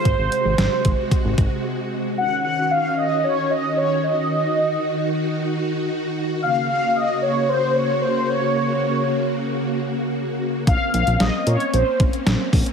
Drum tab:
HH |x-x-x-x-x-x-----|----------------|----------------|----------------|
SD |----o-----------|----------------|----------------|----------------|
BD |o-----o-o-o-----|----------------|----------------|----------------|

HH |----------------|x-xxx-xxx-xxx-ox|
SD |----------------|----o-------o---|
BD |----------------|o---------o---o-|